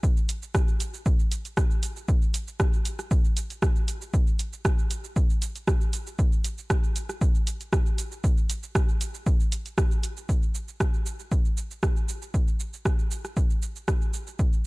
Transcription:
0.03 kick loud
0.03 cabasa soft
0.17 cabasa soft
0.29 closed hi-hat medium
0.29 cabasa medium
0.43 cabasa soft
0.55 kick loud
0.55 cross-stick medium
0.55 cabasa soft
0.68 cabasa soft
0.80 closed hi-hat medium
0.80 cabasa medium
0.94 cabasa soft
1.06 kick loud
1.06 cabasa soft
1.19 cabasa soft
1.32 closed hi-hat medium
1.32 cabasa medium
1.45 closed hi-hat soft
1.45 cabasa soft
1.57 kick loud
1.57 cross-stick medium
1.57 cabasa soft
1.71 cabasa soft
1.83 closed hi-hat medium
1.83 cabasa medium
1.96 cabasa soft
2.08 kick loud
2.08 cabasa soft
2.22 cabasa soft
2.34 closed hi-hat medium
2.34 cabasa medium
2.48 cabasa soft
2.60 kick loud
2.60 cross-stick medium
2.60 cabasa soft
2.73 cabasa soft
2.85 closed hi-hat medium
2.85 cabasa medium
2.99 cross-stick soft
2.99 cabasa soft
3.11 kick loud
3.11 cabasa soft
3.25 cabasa soft
3.37 closed hi-hat medium
3.37 cabasa medium
3.50 closed hi-hat soft
3.50 cabasa soft
3.62 kick loud
3.62 cross-stick medium
3.62 cabasa soft
3.76 cabasa soft
3.88 closed hi-hat medium
3.88 cabasa medium
4.02 cabasa soft
4.14 kick loud
4.14 cabasa soft
4.27 cabasa soft
4.39 closed hi-hat medium
4.39 cabasa medium
4.53 cabasa soft
4.65 kick loud
4.65 cross-stick medium
4.65 cabasa soft
4.79 cabasa soft
4.91 closed hi-hat medium
4.91 cabasa medium
5.04 cabasa soft
5.16 kick loud
5.16 cabasa soft
5.30 cabasa soft
5.42 closed hi-hat medium
5.42 cabasa medium
5.56 closed hi-hat soft
5.56 cabasa soft
5.67 kick loud
5.67 cross-stick medium
5.67 cabasa soft
5.81 cabasa soft
5.93 closed hi-hat medium
5.93 cabasa medium
6.07 cabasa soft
6.19 kick loud
6.19 cabasa soft
6.32 cabasa soft
6.44 closed hi-hat medium
6.44 cabasa medium
6.58 cabasa soft
6.70 kick loud
6.70 cross-stick medium
6.70 cabasa soft
6.84 cabasa soft
6.96 closed hi-hat medium
6.96 cabasa medium
7.09 cross-stick soft
7.09 cabasa soft
7.21 kick loud
7.21 cabasa soft
7.35 cabasa soft
7.47 closed hi-hat medium
7.47 cabasa medium
7.61 closed hi-hat soft
7.61 cabasa soft
7.73 kick loud
7.73 cross-stick medium
7.73 cabasa soft
7.86 cabasa soft
7.98 closed hi-hat medium
7.98 cabasa medium
8.12 cabasa soft
8.24 kick loud
8.24 cabasa soft
8.38 cabasa soft
8.50 closed hi-hat medium
8.50 cabasa medium
8.63 cabasa soft
8.75 kick loud
8.75 cross-stick medium
8.75 cabasa soft
8.89 cabasa soft
9.01 closed hi-hat medium
9.01 cabasa medium
9.14 cabasa soft
9.26 kick loud
9.26 cabasa soft
9.40 cabasa soft
9.52 closed hi-hat medium
9.52 cabasa medium
9.66 closed hi-hat soft
9.66 cabasa soft
9.78 kick loud
9.78 cross-stick medium
9.78 cabasa soft
9.91 cabasa soft
10.03 closed hi-hat medium
10.03 cabasa medium
10.17 cabasa soft
10.29 kick loud
10.29 cabasa soft
10.43 cabasa soft
10.55 cabasa medium
10.68 cabasa soft
10.80 kick loud
10.80 cross-stick medium
10.80 cabasa soft
10.94 cabasa soft
11.06 cabasa medium
11.20 cabasa soft
11.32 kick loud
11.32 cabasa soft
11.45 cabasa soft
11.57 cabasa medium
11.71 cabasa soft
11.83 kick loud
11.83 cross-stick medium
11.83 cabasa soft
11.96 cabasa soft
12.09 cabasa medium
12.22 cabasa soft
12.34 kick loud
12.34 cabasa soft
12.48 cabasa soft
12.60 cabasa medium
12.73 cabasa soft
12.85 kick loud
12.85 cross-stick medium
12.85 cabasa soft
12.99 cabasa soft
13.11 cabasa medium
13.25 cross-stick soft
13.25 cabasa soft
13.37 kick loud
13.37 cabasa soft
13.50 cabasa soft
13.62 cabasa medium
13.76 cabasa soft
13.88 kick loud
13.88 cross-stick medium
13.88 cabasa soft
14.02 cabasa soft
14.14 cabasa medium
14.27 cabasa soft
14.39 kick loud
14.39 cabasa soft
14.53 cabasa soft

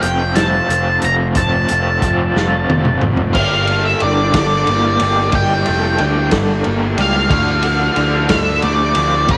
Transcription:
0.00 0.60 F1 medium
0.00 0.38 F3 medium
0.00 3.31 A3 medium
0.00 3.31 F4 medium
0.00 1.34 C5 medium
0.00 0.33 G5 medium
0.00 closed hi-hat medium
0.05 0.38 A3 medium
0.05 0.36 C4 medium
0.05 0.36 F4 medium
0.36 0.68 F3 medium
0.36 0.70 A3 medium
0.36 0.70 C4 medium
0.36 0.70 F4 medium
0.36 1.05 A5 loud
0.36 snare loud
0.36 closed hi-hat medium
0.69 0.98 F1 medium
0.69 1.35 F3 medium
0.69 1.36 A3 medium
0.69 1.37 C4 medium
0.69 1.37 F4 medium
0.69 closed hi-hat medium
1.02 1.32 F1 medium
1.02 1.14 A#5 medium
1.02 closed hi-hat medium
1.35 1.64 F1 medium
1.35 2.02 F3 loud
1.35 1.73 A3 medium
1.35 1.71 C4 medium
1.35 1.71 F4 loud
1.35 3.34 D5 medium
1.35 2.98 A5 loud
1.35 kick loud
1.35 closed hi-hat medium
1.69 1.99 F1 medium
1.69 2.04 C4 medium
1.69 2.06 F4 medium
1.69 closed hi-hat medium
1.74 2.04 A3 medium
2.02 2.30 F1 medium
2.02 2.39 F3 medium
2.02 2.39 A3 medium
2.02 2.38 C4 medium
2.02 kick medium
2.02 closed hi-hat medium
2.07 2.37 F4 medium
2.36 2.64 F1 medium
2.36 2.73 C4 medium
2.36 2.73 F4 medium
2.36 snare medium
2.40 2.71 F3 medium
2.40 2.72 A3 medium
2.69 2.97 F1 medium
2.69 3.35 F3 medium
2.69 high tom medium
2.73 3.35 A3 medium
2.73 3.36 C4 medium
2.73 3.36 F4 medium
2.85 mid tom medium
3.01 3.30 F1 loud
3.01 mid tom medium
3.17 floor tom medium
3.34 3.93 G1 medium
3.34 7.27 G3 medium
3.34 5.01 G3 medium
3.34 7.28 A#3 medium
3.34 9.26 A4 medium
3.34 3.85 F5 loud
3.34 kick loud
3.34 crash loud
3.67 4.36 A4 medium
3.67 ride medium
3.85 4.02 E5 medium
4.00 4.31 G1 medium
4.00 6.00 D4 medium
4.00 4.32 D5 medium
4.00 ride medium
4.34 4.63 G1 medium
4.34 5.66 A4 medium
4.34 5.37 D5 medium
4.34 kick medium
4.34 snare loud
4.34 ride loud
4.67 4.97 G1 medium
4.67 6.34 A#3 medium
4.67 ride medium
5.00 5.30 G1 medium
5.00 5.33 G3 medium
5.00 ride medium
5.32 5.62 G1 medium
5.32 6.95 G3 medium
5.32 6.29 G5 loud
5.32 kick loud
5.32 ride medium
5.66 5.97 F1 medium
5.66 6.31 A4 medium
5.66 ride medium
5.98 6.29 D2 medium
5.98 7.32 D4 medium
5.98 ride medium
6.31 6.61 G1 loud
6.31 7.63 A4 medium
6.31 kick medium
6.31 snare loud
6.31 ride medium
6.64 6.95 G1 medium
6.64 7.31 A#3 medium
6.64 ride medium
6.97 7.27 C#2 medium
6.97 7.30 G3 medium
6.97 ride medium
7.01 8.30 F5 medium
7.29 7.89 D2 loud
7.29 8.96 D3 medium
7.29 9.37 F3 medium
7.29 9.26 D4 medium
7.29 kick loud
7.29 ride medium
7.63 8.29 A4 medium
7.63 ride medium
7.96 8.26 D2 medium
7.96 9.29 D4 medium
7.96 ride medium
8.29 8.59 D2 loud
8.29 9.37 A4 medium
8.29 8.63 E5 loud
8.29 kick medium
8.29 snare loud
8.29 ride medium
8.62 8.92 D2 loud
8.62 9.37 A3 medium
8.62 9.31 D5 loud
8.62 ride medium
8.95 9.25 D2 medium
8.95 9.27 F3 medium
8.95 ride medium
9.27 9.37 F1 loud
9.27 9.37 F3 medium
9.27 9.37 C4 medium
9.27 9.37 A4 medium
9.27 9.37 C5 medium
9.27 kick loud
9.27 ride loud

